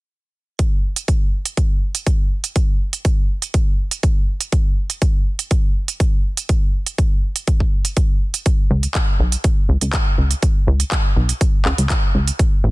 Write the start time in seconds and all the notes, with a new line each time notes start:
0.59 kick, closed hi-hat
0.96 closed hi-hat
1.08 kick, closed hi-hat
1.46 closed hi-hat
1.57 kick, closed hi-hat
1.95 closed hi-hat
2.07 kick, closed hi-hat
2.44 closed hi-hat
2.56 kick, closed hi-hat
2.93 closed hi-hat
3.05 kick, closed hi-hat
3.42 closed hi-hat
3.54 kick, closed hi-hat
3.91 closed hi-hat
4.03 kick, closed hi-hat
4.41 closed hi-hat
4.52 kick, closed hi-hat
4.90 closed hi-hat
5.02 kick, closed hi-hat
5.39 closed hi-hat
5.51 kick, closed hi-hat
5.88 closed hi-hat
6.00 kick, closed hi-hat
6.37 closed hi-hat
6.49 kick, closed hi-hat
6.87 closed hi-hat
6.98 kick, closed hi-hat
7.36 closed hi-hat
7.47 kick, closed hi-hat
7.60 kick
7.85 closed hi-hat
7.97 kick, closed hi-hat
8.34 closed hi-hat
8.46 kick, closed hi-hat
8.71 C#2
8.83 closed hi-hat
8.95 kick, clap, closed hi-hat
9.20 B1
9.32 closed hi-hat
9.44 kick, closed hi-hat
9.69 C#2
9.81 C#2, closed hi-hat
9.93 kick, clap, closed hi-hat
10.18 C#2
10.31 closed hi-hat
10.42 kick, closed hi-hat
10.67 C#2
10.80 closed hi-hat
10.92 kick, clap, closed hi-hat
11.16 B1
11.29 closed hi-hat
11.41 kick, closed hi-hat
11.65 C#2, clap
11.78 C#2, closed hi-hat
11.90 kick, clap, closed hi-hat
12.15 C#2
12.28 closed hi-hat
12.39 kick, closed hi-hat
12.64 A1